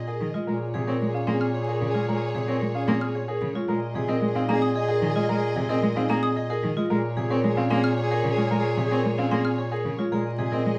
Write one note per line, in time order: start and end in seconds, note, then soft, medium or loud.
0.00 0.33 A#2 medium
0.00 0.11 G#4 soft
0.00 0.30 G#4 medium
0.00 0.11 D#5 soft
0.00 0.30 D#5 medium
0.06 0.26 G#4 soft
0.06 0.25 G#4 medium
0.06 0.25 A#4 medium
0.21 0.31 D#3 medium
0.34 0.44 G#3 medium
0.34 0.51 F4 medium
0.34 0.51 D#5 medium
0.47 3.54 A#2 medium
0.47 0.58 G#3 medium
0.47 3.51 G#4 medium
0.47 0.67 G#4 soft
0.47 0.65 A#4 medium
0.47 3.51 C#5 medium
0.74 0.84 C3 medium
0.74 0.91 G#4 medium
0.74 0.92 G#4 medium
0.74 0.95 G#4 soft
0.87 0.98 C4 medium
0.87 1.05 A#4 medium
0.87 1.05 C#5 medium
1.02 1.11 G#3 medium
1.02 1.23 G#4 medium
1.14 1.32 C#4 medium
1.14 1.32 F5 medium
1.27 1.38 A#3 medium
1.27 1.45 C4 medium
1.27 1.45 G#4 medium
1.27 1.45 C6 medium
1.32 1.51 G#4 medium
1.41 1.58 F6 medium
1.54 1.72 G#4 medium
1.54 1.72 C#5 medium
1.59 1.79 G#4 medium
1.68 1.85 G#4 medium
1.68 1.85 A#4 medium
1.81 1.91 C#3 medium
1.87 2.07 G#4 medium
1.94 2.04 G#3 medium
1.94 2.12 F4 medium
1.94 2.12 C#5 medium
2.08 2.18 G#3 medium
2.08 2.25 A#4 medium
2.15 2.35 G#4 medium
2.35 2.45 C3 medium
2.35 2.52 G#4 medium
2.43 2.63 G#4 medium
2.48 2.58 C4 medium
2.48 2.65 A#4 medium
2.48 2.66 C#5 medium
2.61 2.71 G#3 medium
2.71 2.92 C#4 medium
2.71 2.91 G#4 medium
2.71 2.92 F5 medium
2.88 2.98 A#3 medium
2.88 3.06 C4 medium
2.88 3.06 G#4 medium
2.88 3.06 C6 medium
2.99 3.19 G#4 medium
2.99 3.19 F6 medium
3.15 3.32 G#4 medium
3.15 3.32 C#5 medium
3.27 3.47 G#4 soft
3.27 3.46 G#4 medium
3.27 3.46 A#4 medium
3.42 3.52 C#3 medium
3.55 3.65 G#3 medium
3.55 3.73 F4 medium
3.55 3.73 C#5 medium
3.68 6.75 A#2 medium
3.68 3.78 G#3 medium
3.68 6.72 G#4 medium
3.68 3.88 G#4 soft
3.68 3.86 A#4 medium
3.68 6.73 D#5 medium
3.95 4.05 C3 medium
3.95 4.13 G#4 medium
3.95 4.16 G#4 medium
4.08 4.18 C4 medium
4.08 4.26 A#4 medium
4.08 4.26 D#5 medium
4.22 4.32 G#3 medium
4.22 4.44 G#4 medium
4.35 4.45 C4 medium
4.35 4.53 D#4 medium
4.35 4.53 F5 medium
4.49 4.59 A#3 medium
4.49 4.66 C4 medium
4.49 4.66 G#4 medium
4.49 4.72 G#4 medium
4.49 4.66 A#5 medium
4.62 4.80 D#6 medium
4.75 4.93 G#4 medium
4.75 4.93 D#5 medium
4.80 5.00 G#4 medium
4.89 5.06 G#4 medium
4.89 5.07 A#4 medium
5.02 5.12 D#3 medium
5.08 5.28 G#4 medium
5.16 5.26 G#3 medium
5.16 5.33 F4 medium
5.16 5.33 D#5 medium
5.29 5.39 G#3 medium
5.29 5.47 A#4 medium
5.36 5.56 G#4 medium
5.56 5.66 C3 medium
5.56 5.73 G#4 medium
5.64 5.84 G#4 medium
5.69 5.79 C4 medium
5.69 5.87 A#4 medium
5.69 5.87 D#5 medium
5.83 5.93 G#3 medium
5.92 6.06 C4 medium
5.92 6.14 D#4 medium
5.92 6.12 G#4 medium
5.92 6.14 F5 medium
6.09 6.19 A#3 medium
6.09 6.27 C4 medium
6.09 6.27 G#4 medium
6.09 6.27 A#5 medium
6.21 6.40 G#4 medium
6.21 6.40 D#6 medium
6.36 6.54 G#4 medium
6.36 6.54 D#5 medium
6.49 6.68 G#4 soft
6.49 6.67 G#4 medium
6.49 6.67 A#4 medium
6.63 6.73 D#3 medium
6.77 6.87 G#3 medium
6.77 6.94 F4 medium
6.77 6.94 D#5 medium
6.90 9.97 A#2 medium
6.90 7.00 G#3 medium
6.90 9.94 G#4 medium
6.90 7.10 G#4 soft
6.90 7.08 A#4 medium
6.90 9.94 C#5 medium
7.17 7.27 C3 medium
7.17 7.34 G#4 medium
7.17 7.37 G#4 medium
7.30 7.40 C4 medium
7.30 7.48 A#4 medium
7.30 7.48 C#5 medium
7.44 7.54 G#3 medium
7.44 7.66 G#4 medium
7.57 7.67 C4 medium
7.57 7.75 C#4 medium
7.57 7.74 F5 medium
7.70 7.80 A#3 medium
7.70 7.88 C4 medium
7.70 7.88 G#4 medium
7.70 7.94 G#4 medium
7.70 7.88 C6 medium
7.84 8.01 F6 medium
7.97 8.15 G#4 medium
7.97 8.15 C#5 medium
8.02 8.21 G#4 medium
8.11 8.28 G#4 medium
8.11 8.28 A#4 medium
8.24 8.34 C#3 medium
8.30 8.50 G#4 medium
8.37 8.47 G#3 medium
8.37 8.55 F4 medium
8.37 8.55 C#5 medium
8.51 8.61 G#3 medium
8.51 8.68 A#4 medium
8.58 8.78 G#4 medium
8.77 8.87 C3 medium
8.77 8.95 G#4 medium
8.86 9.06 G#4 medium
8.91 9.01 C4 medium
8.91 9.09 A#4 medium
8.91 9.08 C#5 medium
9.05 9.15 G#3 medium
9.14 9.34 G#4 medium
9.18 9.28 C4 medium
9.18 9.35 C#4 medium
9.18 9.35 F5 medium
9.31 9.42 A#3 medium
9.31 9.49 C4 medium
9.31 9.49 G#4 medium
9.31 9.49 C6 medium
9.42 9.62 G#4 medium
9.42 9.62 F6 medium
9.58 9.75 G#4 medium
9.58 9.75 C#5 medium
9.70 9.90 G#4 soft
9.70 9.89 G#4 medium
9.70 9.89 A#4 medium
9.85 9.95 C#3 medium
9.98 10.08 G#3 medium
9.98 10.16 F4 medium
9.98 10.16 C#5 medium
10.12 10.79 A#2 medium
10.12 10.22 G#3 medium
10.12 10.32 G#4 soft
10.12 10.29 G#4 medium
10.12 10.79 G#4 medium
10.12 10.29 A#4 medium
10.12 10.79 D#5 medium
10.38 10.49 C3 medium
10.38 10.56 G#4 medium
10.38 10.62 G#4 medium
10.52 10.62 C4 medium
10.52 10.69 A#4 medium
10.52 10.69 D#5 medium
10.66 10.75 G#3 medium
10.70 10.79 G#4 medium